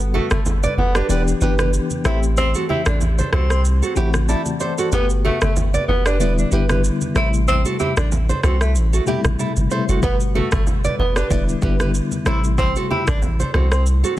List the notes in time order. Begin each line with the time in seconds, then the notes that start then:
Already playing: G1 G3 B3 F#4 A4
0.14 A3 F#4 A4, high conga
0.31 G1 A3, cross-stick, high conga, shaker
0.46 low conga, shaker
0.63 B4 D5, high conga, shaker
0.77 F#1 B3, low conga
0.95 D4 G4 B4, cross-stick, shaker
1.08 E1 E3 B3 D4 G4 B4 D5, shaker
1.28 shaker
1.40 G1 E3 B3 D4 G4 B4, high conga, shaker
1.59 G4 B4, cross-stick, high conga, shaker
1.73 shaker
1.90 high conga, shaker
2.04 A1 E3 A3 C4 E4 G4 A4 C5, cross-stick, shaker
2.23 shaker
2.37 C4, low conga, shaker
2.54 F#4 A4, shaker
2.69 E4 G4, high conga
2.86 A1 D4, cross-stick, high conga, shaker
3.01 low conga, shaker
3.19 A4 C5, high conga, shaker
3.33 C2 C4 F#4 A4, cross-stick, low conga
3.50 C4, cross-stick, shaker
3.65 shaker
3.82 F#4 A4, shaker
3.95 A1 E3 A3 C4 E4 F#4 G4, high conga, shaker
4.14 cross-stick, high conga, shaker
4.29 E4 A4 D5 A5, shaker
4.46 high conga, shaker
4.60 A4 C5 D5, shaker
4.78 F#4 A4, shaker
4.91 G1 A3 B3 F#4 G4 B4, low conga, shaker
5.10 shaker
5.25 A3 F#4 A4, high conga
5.41 G1 A3, cross-stick, high conga, shaker
5.56 low conga, shaker
5.74 B4 D5, high conga, shaker
5.88 F#1 B3, low conga
6.06 D4 G4 B4, cross-stick, shaker
6.19 E1 D3 G3 B3 E4 B4 D5, shaker
6.38 shaker
6.51 G1 D3 G3 B3 E4 G4 B4, high conga, shaker
6.69 G4 B4, cross-stick, high conga, shaker
6.84 shaker
7.01 high conga, shaker
7.14 A1 C3 G3 A3 E4 A4 C5, cross-stick, shaker
7.34 shaker
7.48 C4, low conga, shaker
7.65 F#4 A4, shaker
7.80 E4 G4, high conga, shaker
7.97 A1 D4, cross-stick, high conga, shaker
8.12 low conga, shaker
8.29 A4 C5, high conga, shaker
8.43 C2 C4 F#4 A4, cross-stick, low conga, shaker
8.61 A3, cross-stick, shaker
8.75 A1, shaker
8.93 F#4 A4, shaker
9.06 B2 G3 A3 E4 G4, high conga, shaker
9.12 C3
9.25 A1, cross-stick, high conga, shaker
9.39 E4 A4, shaker
9.56 G1, high conga, shaker
9.69 C3 G3 A3 E4 A4 C5, shaker
9.89 F#1 F#4 A4, shaker
10.02 G1 B2 G3 A3 B3 F#4 G4 B4, kick, low conga, shaker
10.20 shaker
10.35 A3 F#4 A4, high conga
10.52 G1 A3, kick, cross-stick, high conga, shaker
10.67 low conga, shaker
10.84 B4 D5, high conga, shaker
10.99 F#1 B3, low conga
11.16 D4 G4 B4, cross-stick, shaker
11.29 E1 D3 G3 B3 E4 B4 D5, kick, shaker
11.49 shaker
11.61 G1 D3 G3 B3 E4 G4 B4, kick, high conga, shaker
11.80 G4 B4, cross-stick, high conga, shaker
11.95 shaker
12.11 high conga, shaker
12.25 A1 C3 G3 A3 E4 A4 C5, cross-stick, shaker
12.44 shaker
12.58 C4, kick, low conga, shaker
12.76 F#4 A4, shaker
12.91 E4 G4, high conga
13.07 A1 D4, kick, cross-stick, high conga, shaker
13.22 low conga, shaker
13.40 A4 C5, high conga, shaker
13.54 C2 C4 F#4 A4, cross-stick, low conga
13.72 C4, cross-stick, shaker
13.86 shaker
14.04 F#4 A4, shaker